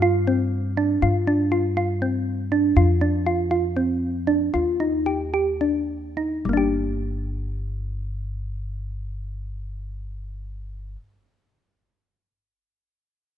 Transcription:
0.00 0.98 G2 medium
0.00 0.21 F4 medium
0.27 0.64 C4 medium
0.77 0.96 D4 medium
1.02 2.73 G2 medium
1.02 1.21 F4 medium
1.27 1.46 D4 medium
1.52 1.70 F4 medium
1.77 1.95 F4 medium
2.02 2.39 C4 medium
2.52 2.70 D4 medium
2.76 4.50 F2 medium
2.76 2.95 F4 medium
3.01 3.20 D4 medium
3.27 3.45 F4 medium
3.51 3.70 F4 medium
3.77 4.15 C4 medium
4.27 4.47 D4 medium
4.54 6.42 D#2 medium
4.54 4.73 F4 medium
4.80 5.00 D#4 medium
5.06 5.27 G4 medium
5.34 5.54 G4 medium
5.61 6.03 D4 medium
6.17 6.38 D#4 medium
6.45 10.95 G1 medium
6.45 10.95 G3 medium
6.49 10.99 A#3 medium
6.53 11.03 D4 medium
6.53 11.07 G4 medium

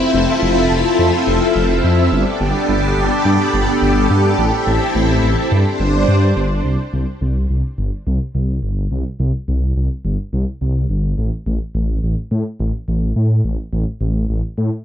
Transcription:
0.00 2.08 C4 medium
0.00 2.08 E4 medium
0.00 2.10 F4 medium
0.00 2.10 A4 medium
0.00 2.08 E5 loud
0.14 0.26 F1 medium
0.42 0.67 F1 medium
0.70 0.83 F1 medium
0.99 1.11 F2 medium
1.27 1.40 F1 medium
1.56 1.80 F1 medium
1.84 2.09 F2 medium
2.12 2.25 G1 loud
2.12 4.36 B3 medium
2.12 4.36 D4 medium
2.12 6.61 G4 medium
2.12 5.48 A4 medium
2.12 4.36 D5 medium
2.40 2.53 G1 medium
2.69 2.94 G1 loud
2.97 3.09 G1 medium
3.25 3.38 G2 medium
3.54 3.66 G1 medium
3.82 4.07 G1 medium
4.10 4.35 G2 medium
4.38 4.51 A1 loud
4.38 5.51 C4 medium
4.38 5.51 E4 medium
4.38 5.51 E5 medium
4.67 4.79 A1 medium
4.95 5.20 A1 loud
5.23 5.36 A1 medium
5.52 5.64 G2 medium
5.52 6.64 D4 medium
5.52 6.64 C5 medium
5.80 6.05 G1 medium
6.08 6.33 G2 loud
6.37 6.61 G1 medium
6.65 6.77 C2 loud
6.93 7.06 C2 medium
7.21 7.46 C2 medium
7.50 7.62 C2 medium
7.78 7.91 G1 medium
8.07 8.19 C2 medium
8.35 8.60 C2 medium
8.63 8.88 G1 medium
8.91 9.04 C2 loud
9.20 9.32 C2 medium
9.48 9.73 C2 medium
9.76 9.89 C2 medium
10.05 10.17 G1 medium
10.33 10.45 C2 medium
10.61 10.86 C2 medium
10.90 11.14 G1 medium
11.18 11.30 A1 loud
11.46 11.59 A1 medium
11.75 11.99 A1 loud
12.03 12.15 A1 medium
12.31 12.44 A2 medium
12.60 12.72 A1 medium
12.88 13.13 A1 medium
13.16 13.41 A2 medium
13.45 13.57 A1 loud
13.73 13.85 A1 medium
14.01 14.25 A1 medium
14.29 14.42 A1 medium
14.58 14.70 A2 medium

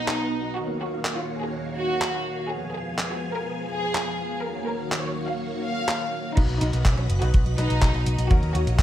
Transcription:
0.00 0.55 B2 medium
0.00 0.55 B3 medium
0.00 0.47 D#4 medium
0.00 0.53 F#4 medium
0.00 0.55 D#5 medium
0.00 0.55 F#5 medium
0.08 clap loud
0.56 2.48 D#3 medium
0.56 2.48 A#3 medium
0.56 2.48 F#4 medium
0.56 0.78 F#4 medium
0.56 2.48 C#5 medium
0.56 6.33 F5 medium
0.80 1.12 F#4 medium
1.05 clap loud
1.17 1.38 F4 medium
1.41 1.73 G#4 medium
1.77 2.40 F#4 medium
2.02 clap loud
2.50 4.42 F3 medium
2.50 4.42 B3 medium
2.50 2.71 G#4 medium
2.50 4.42 G#4 medium
2.50 4.42 G#5 medium
2.74 3.06 G#4 medium
2.98 clap loud
3.11 3.32 F#4 medium
3.35 3.66 A#4 medium
3.71 4.34 G#4 medium
3.95 clap loud
4.43 6.35 D#3 medium
4.43 6.35 A#3 medium
4.43 6.35 F#4 medium
4.43 4.65 A#4 medium
4.43 6.35 C#5 medium
4.67 4.99 A#4 medium
4.92 clap loud
5.04 5.25 C#5 medium
5.28 5.60 F5 medium
5.64 6.27 F5 medium
5.89 clap loud
6.37 6.46 B1 loud
6.37 7.19 B2 medium
6.37 7.19 F#3 medium
6.37 7.19 B3 medium
6.37 6.58 D#4 loud
6.37 7.19 D#4 medium
6.37 8.83 F#4 medium
6.37 7.19 B4 medium
6.37 8.29 B4 medium
6.37 8.83 D#5 medium
6.37 8.29 B5 medium
6.37 kick loud
6.37 closed hi-hat medium
6.37 crash loud
6.49 6.58 B1 medium
6.49 closed hi-hat soft
6.61 6.70 B1 loud
6.61 6.93 D#4 loud
6.61 closed hi-hat loud
6.73 6.82 B1 medium
6.73 closed hi-hat medium
6.85 6.94 B1 loud
6.85 kick loud
6.85 clap loud
6.85 closed hi-hat medium
6.97 7.06 B1 medium
6.97 7.19 C#4 medium
6.97 closed hi-hat soft
7.10 7.19 F#1 medium
7.10 closed hi-hat medium
7.21 7.31 B1 medium
7.21 7.37 B2 medium
7.21 7.37 F#3 medium
7.21 7.37 B3 medium
7.21 7.37 D#4 medium
7.21 7.53 F#4 medium
7.21 7.37 B4 medium
7.21 closed hi-hat medium
7.34 7.43 B1 loud
7.34 kick loud
7.34 closed hi-hat medium
7.46 7.55 B1 medium
7.46 closed hi-hat soft
7.58 7.67 B1 medium
7.58 8.28 B2 medium
7.58 8.28 F#3 medium
7.58 8.28 B3 medium
7.58 8.21 D#4 loud
7.58 8.28 D#4 medium
7.58 8.28 B4 medium
7.58 closed hi-hat medium
7.70 7.79 B1 medium
7.70 closed hi-hat medium
7.82 7.91 B1 loud
7.82 kick loud
7.82 clap loud
7.82 closed hi-hat medium
7.94 8.03 B1 medium
7.94 closed hi-hat soft
8.06 8.15 B1 medium
8.06 closed hi-hat loud
8.18 8.28 B1 medium
8.18 closed hi-hat medium
8.31 8.40 D#2 loud
8.31 8.83 F#3 medium
8.31 8.83 C#4 medium
8.31 8.83 D#4 medium
8.31 8.52 F#4 loud
8.31 8.83 A#4 medium
8.31 8.83 C#5 medium
8.31 8.83 A#5 medium
8.31 kick loud
8.31 closed hi-hat medium
8.43 8.52 D#2 medium
8.43 closed hi-hat soft
8.55 8.64 D#2 loud
8.55 8.83 F#4 medium
8.55 closed hi-hat medium
8.67 8.76 A#1 medium
8.67 closed hi-hat medium
8.79 8.83 D#2 loud
8.79 kick loud
8.79 clap loud
8.79 closed hi-hat medium

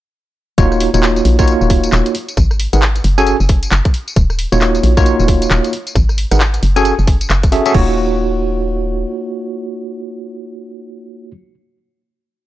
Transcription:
0.58 0.88 D#1 loud
0.58 0.89 A#3 loud
0.58 0.89 D#4 medium
0.58 0.89 F4 medium
0.58 0.89 F#4 medium
0.58 0.89 C#5 loud
0.58 kick loud
0.58 closed hi-hat medium
0.58 tambourine medium
0.72 cross-stick soft
0.72 tambourine soft
0.80 open hi-hat loud
0.94 1.21 D#1 medium
0.94 1.36 A#3 medium
0.94 1.36 D#4 medium
0.94 1.36 F4 medium
0.94 1.36 F#4 medium
0.94 1.36 C#5 medium
0.94 closed hi-hat medium
0.94 tambourine medium
1.03 clap loud
1.03 tambourine medium
1.16 closed hi-hat soft
1.16 tambourine soft
1.25 1.55 A#1 medium
1.25 open hi-hat loud
1.39 2.14 A#3 loud
1.39 2.14 D#4 medium
1.39 2.14 F4 medium
1.39 2.14 F#4 medium
1.39 2.14 C#5 loud
1.39 kick loud
1.39 closed hi-hat medium
1.39 tambourine medium
1.48 closed hi-hat medium
1.48 tambourine medium
1.61 1.89 D#1 medium
1.61 tambourine soft
1.70 kick loud
1.70 open hi-hat loud
1.84 closed hi-hat medium
1.84 tambourine medium
1.92 2.02 D#1 loud
1.92 clap loud
1.92 tambourine soft
2.06 closed hi-hat medium
2.06 tambourine soft
2.15 open hi-hat loud
2.28 closed hi-hat soft
2.28 tambourine medium
2.37 2.67 G#1 loud
2.37 kick loud
2.37 closed hi-hat medium
2.37 tambourine medium
2.51 cross-stick soft
2.51 tambourine soft
2.60 open hi-hat loud
2.73 3.01 G#1 medium
2.73 2.82 D#4 medium
2.73 2.82 G#4 medium
2.73 2.82 A#4 medium
2.73 2.82 B4 medium
2.73 2.82 F#5 medium
2.73 closed hi-hat medium
2.73 tambourine medium
2.82 clap loud
2.82 tambourine soft
2.96 closed hi-hat soft
2.96 tambourine soft
3.04 3.35 F#1 medium
3.04 open hi-hat loud
3.18 3.35 C#4 loud
3.18 3.35 F#4 medium
3.18 3.35 G#4 medium
3.18 3.35 A4 medium
3.18 3.35 G#5 loud
3.18 closed hi-hat medium
3.18 tambourine medium
3.27 closed hi-hat medium
3.27 tambourine medium
3.40 3.68 F#1 medium
3.40 tambourine soft
3.49 kick loud
3.49 open hi-hat loud
3.63 closed hi-hat medium
3.63 tambourine medium
3.71 3.82 F#1 loud
3.71 clap loud
3.71 tambourine medium
3.85 kick loud
3.85 closed hi-hat medium
3.85 tambourine soft
3.94 open hi-hat medium
4.08 closed hi-hat soft
4.08 tambourine medium
4.16 4.47 D#1 loud
4.16 kick loud
4.16 closed hi-hat medium
4.16 tambourine medium
4.30 cross-stick soft
4.30 tambourine soft
4.39 open hi-hat loud
4.52 4.80 D#1 medium
4.52 4.94 A#3 medium
4.52 4.94 D#4 medium
4.52 4.94 F4 medium
4.52 4.94 F#4 medium
4.52 4.94 C#5 medium
4.52 closed hi-hat medium
4.52 tambourine medium
4.61 clap loud
4.61 tambourine soft
4.75 closed hi-hat soft
4.75 tambourine soft
4.83 5.14 A#1 medium
4.83 open hi-hat medium
4.97 5.72 A#3 loud
4.97 5.72 D#4 medium
4.97 5.72 F4 medium
4.97 5.72 F#4 medium
4.97 5.72 C#5 loud
4.97 kick loud
4.97 closed hi-hat soft
4.97 tambourine medium
5.06 closed hi-hat medium
5.06 tambourine medium
5.19 5.47 D#1 medium
5.19 tambourine soft
5.28 kick loud
5.28 open hi-hat loud
5.42 closed hi-hat medium
5.42 tambourine medium
5.51 5.61 D#1 loud
5.51 clap loud
5.51 tambourine medium
5.64 closed hi-hat medium
5.64 tambourine soft
5.73 open hi-hat medium
5.87 closed hi-hat soft
5.87 tambourine medium
5.95 6.26 G#1 loud
5.95 kick loud
5.95 closed hi-hat medium
5.95 tambourine medium
6.09 cross-stick soft
6.09 tambourine soft
6.18 open hi-hat loud
6.31 6.59 G#1 medium
6.31 6.41 D#4 medium
6.31 6.41 G#4 medium
6.31 6.41 A#4 medium
6.31 6.41 B4 medium
6.31 6.41 F#5 medium
6.31 cross-stick medium
6.31 closed hi-hat medium
6.31 tambourine medium
6.40 clap loud
6.40 tambourine medium
6.54 closed hi-hat soft
6.54 tambourine soft
6.63 6.93 F#1 medium
6.63 open hi-hat medium
6.76 6.94 C#4 loud
6.76 6.94 F#4 medium
6.76 6.94 G#4 medium
6.76 6.94 A4 medium
6.76 6.94 G#5 loud
6.76 closed hi-hat medium
6.76 tambourine medium
6.85 closed hi-hat medium
6.85 tambourine medium
6.99 7.26 F#1 medium
6.99 tambourine soft
7.07 kick loud
7.07 open hi-hat loud
7.21 closed hi-hat medium
7.21 tambourine medium
7.30 7.60 F#1 medium
7.30 clap loud
7.30 tambourine medium
7.43 kick loud
7.43 closed hi-hat medium
7.43 tambourine soft
7.52 7.64 C#4 medium
7.52 7.64 F#4 medium
7.52 7.64 G#4 medium
7.52 7.64 A4 medium
7.52 7.64 E5 loud
7.52 open hi-hat medium
7.66 7.74 C#4 loud
7.66 7.73 F#4 medium
7.66 7.73 G#4 medium
7.66 7.73 A4 medium
7.66 7.74 E5 loud
7.66 closed hi-hat soft
7.66 tambourine medium
7.74 9.05 D#1 loud
7.74 11.31 A#3 medium
7.74 11.31 F4 medium
7.74 11.31 F#4 medium
7.74 11.31 C#5 medium
7.74 kick loud
7.74 crash medium

